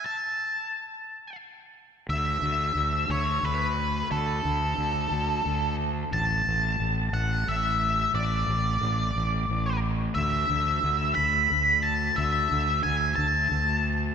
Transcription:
X:1
M:6/8
L:1/8
Q:3/8=59
K:Dlyd
V:1 name="Lead electric guitar"
a4 z2 | e3 c B2 | A4- A z | a3 f e2 |
d4- d z | e3 b2 a | e2 g a2 z |]
V:2 name="Fingered electric bass" clef=bass
z6 | D,, D,, D,, D,, D,,2 | D,, D,, D,, D,, D,,2 | A,,, A,,, A,,, A,,, A,,,2 |
A,,, A,,, A,,, A,,, A,,,2 | D,, D,, D,, D,, D,,2 | D,, D,, D,, D,, D,,2 |]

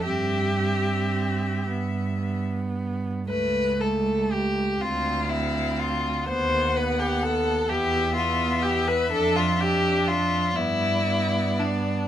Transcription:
X:1
M:6/8
L:1/16
Q:3/8=40
K:Gmix
V:1 name="Violin"
e8- e z3 | z6 f6 | ^f6 e6- | e6 d6 |]
V:2 name="Violin"
G6 z6 | B2 A2 G2 F2 E2 F2 | c2 B G A2 G2 F2 G B | A F G2 F2 E4 D2 |]
V:3 name="Viola"
C2 C4 B,2 B,4 | A,2 A,4 C2 C4 | B,2 B,4 B,2 B,4 | D2 D4 B,2 B,4 |]
V:4 name="Cello" clef=bass
G,,6 G,,6 | ^C,,6 D,,6 | ^D,,6 E,,6 | F,,6 G,,6 |]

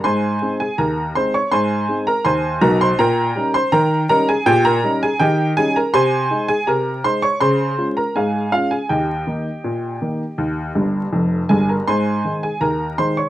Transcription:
X:1
M:2/4
L:1/16
Q:1/4=81
K:Ab
V:1 name="Upright piano"
[cac']3 [Aa] [Bb]2 [cc'] [dd'] | [cac']3 [Bb] [cac']2 [Bb] [cc'] | [Bgb]3 [cc'] [Bgb]2 [Bb] [Aa] | [Gg] [Bb]2 [Aa] [Geg]2 [Aa] [Bb] |
[cac']3 [Aa] [Bb]2 [cc'] [dd'] | [cc']3 [Bb] [Afa]2 [Ff] [Aa] | [Geg]8- | [Geg]4 z2 [Aa] [Bb] |
[cac']3 [Aa] [Bb]2 [cc'] [dd'] |]
V:2 name="Upright piano" clef=bass
A,,2 [A,CE]2 E,,2 [A,CE]2 | A,,2 [A,CE]2 E,,2 [_C,,_C,]2 | B,,2 [G,DE]2 E,2 [G,DE]2 | B,,2 [G,DE]2 E,2 [G,DE]2 |
C,2 [A,E]2 C,2 [A,E]2 | D,2 [A,DF]2 A,,2 [A,D]2 | E,,2 [E,B,E]2 B,,2 [E,B,E]2 | E,,2 [G,,,G,,]2 [F,,,F,,]2 [G,,,G,,]2 |
A,,2 [E,A,E]2 E,,2 [E,A,E]2 |]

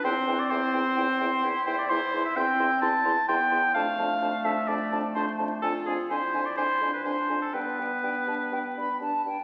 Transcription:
X:1
M:4/4
L:1/16
Q:1/4=127
K:C
V:1 name="Flute"
g2 g2 g2 g2 g2 g2 g2 g2 | [K:Ddor] c'2 c'2 c'2 c'2 c'2 c'2 c'2 c'2 | a2 a2 a2 a2 a2 a2 a2 a2 | _a2 a2 a2 a2 a2 a2 a2 a2 |
g2 g2 g2 a2 g2 b2 a2 g2 |]
V:2 name="Oboe"
c3 d c8- c2 c d | [K:Ddor] c3 e g4 a4 g4 | f6 e2 d4 c2 z2 | A2 _A2 c3 d c3 B c3 =A |
B12 z4 |]
V:3 name="French horn"
E2 E2 E2 E2 E2 E2 E2 E2 | [K:Ddor] E2 E2 E2 E2 E2 E2 E2 E2 | D2 D2 D2 D2 D2 D2 D2 D2 | D2 D2 D2 D2 D2 D2 D2 D2 |
D2 D2 D2 D2 D2 D2 D2 D2 |]
V:4 name="Clarinet"
C12 E4 | [K:Ddor] E4 C6 z2 B,4 | A,16 | F4 E8 D4 |
B,12- B,2 z2 |]
V:5 name="Bassoon" clef=bass
E,,2 E,,2 E,,2 E,,2 E,,2 E,,2 E,,2 E,,2 | [K:Ddor] E,,2 E,,2 E,,2 E,,2 E,,2 E,,2 E,,2 E,,2 | F,,2 F,,2 F,,2 F,,2 F,,2 F,,2 F,,2 F,,2 | F,,2 F,,2 F,,2 F,,2 F,,2 F,,2 F,,2 F,,2 |
G,,2 G,,2 G,,2 G,,2 G,,2 G,,2 G,,2 G,,2 |]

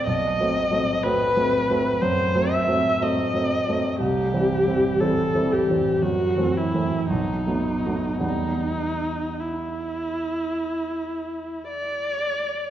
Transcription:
X:1
M:4/4
L:1/8
Q:1/4=58
K:Bphr
V:1 name="Viola"
^d2 B2 c e d2 | G2 A G F E ^D2 | ^D2 E4 =d2 |]
V:2 name="Grand piano"
(3B,,, [F,A,C] [F,A,C] (3[F,A,C] [F,A,C] [F,A,C] (3F,, [F,A,C] [F,A,C] (3[F,A,C] [F,A,C] [F,A,C] | (3C,, [E,G,C] [E,G,C] (3[E,G,C] [E,G,C] [E,G,C] (3F,, [E,A,C] [E,A,C] (3B,,, [F,A,B,] [F,A,B,] | [E,,G,B,]8 |]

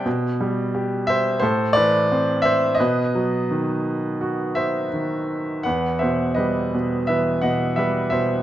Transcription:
X:1
M:4/4
L:1/8
Q:1/4=86
K:Bphr
V:1 name="Grand piano"
z3 [ce] [Ac] [Bd]2 [ce] | [B^d]4- [Bd] [ce]3 | [K:Em] [Bf] [ce] [B^d]2 [Be] [df] [Be] [ce] |]
V:2 name="Grand piano" clef=bass
B,, G, G2 A,, E, C2 | B,, F, ^D,2 F2 D,2 | [K:Em] E,, B,, G, B,, E, B,, G, B,, |]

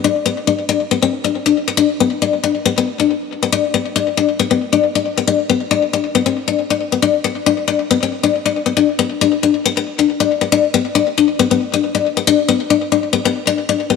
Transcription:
X:1
M:4/4
L:1/16
Q:"Swing 16ths" 1/4=137
K:Bphr
V:1 name="Steel-string acoustic guitar"
D2 B,2 D2 D2 B, C2 D2 D2 B, | D2 B,2 D2 D2 B, B,2 D2 z2 B, | D2 B,2 D2 D2 B, B,2 D2 D2 B, | D2 B,2 D2 D2 B, C2 D2 D2 B, |
D2 B,2 D2 D2 B, C2 D2 D2 B, | D2 B,2 D2 D2 B, B,2 D2 D2 B, | D2 B,2 D2 D2 B, B,2 D2 D2 B, | D2 B,2 D2 D2 B, B,2 D2 D2 B, |]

